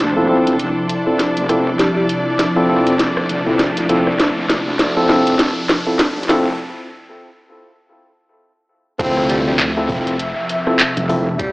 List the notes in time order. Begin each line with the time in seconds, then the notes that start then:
Already playing: C3 F3 D4 E4 A4 C5 D5, riser
0.00 D2, snare, closed hi-hat
0.17 C4 E4 F4 A4
0.29 F1 C4 E4 F4 A4
0.47 closed hi-hat
0.59 closed hi-hat
0.89 closed hi-hat
1.07 C4 E4 F4 A4
1.19 snare, closed hi-hat
1.37 F1, closed hi-hat
1.49 C4 E4 F4 A4, cross-stick, closed hi-hat
1.79 G3, snare, closed hi-hat
1.96 G3
2.09 closed hi-hat
2.39 snare, closed hi-hat
2.56 C4 E4 F4 A4
2.69 F1 C4 E4 F4 A4
2.87 closed hi-hat
2.99 snare, closed hi-hat
3.17 F1, cross-stick
3.29 D2, closed hi-hat
3.46 C4 E4 F4 A4
3.59 snare, closed hi-hat
3.77 closed hi-hat
3.89 C4 E4 F4 A4, closed hi-hat
4.07 cross-stick
4.19 D2, snare, closed hi-hat
4.50 snare, closed hi-hat
4.79 D2, snare, closed hi-hat
4.97 C4 E4 F4 A4
5.09 F1 C4 E4 F4 A4, snare
5.27 closed hi-hat
5.39 snare, closed hi-hat
5.69 snare, closed hi-hat
5.87 C4 E4 F4 A4
5.99 snare, closed hi-hat
6.17 F1
6.23 closed hi-hat
6.29 C4 E4 F4 A4, snare, closed hi-hat
8.99 D2 C3 F3 C4 E4 F4 A4 E5, kick, closed hi-hat, crash, downlifter
9.17 cross-stick
9.29 G3, closed hi-hat
9.47 G3
9.59 D2, clap, closed hi-hat
9.77 C4 E4 F4 A4
9.89 F1 C4 E4 F4 A4, kick, open hi-hat
10.07 closed hi-hat
10.19 closed hi-hat
10.49 closed hi-hat
10.67 C4 E4 F4 A4, cross-stick
10.79 clap, closed hi-hat
10.97 F1, closed hi-hat
11.09 C4 E4 F4 A4, open hi-hat
11.39 G3, kick, closed hi-hat